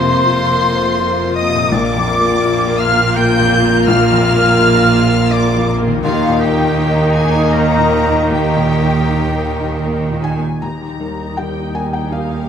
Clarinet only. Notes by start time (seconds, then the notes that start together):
Already playing: C5
1.35 D#5
1.72 D5
2.80 F5
3.16 G5
3.87 F5
5.31 D5
6.03 F4
6.40 G4
7.15 G#4
7.53 A#4
8.30 G4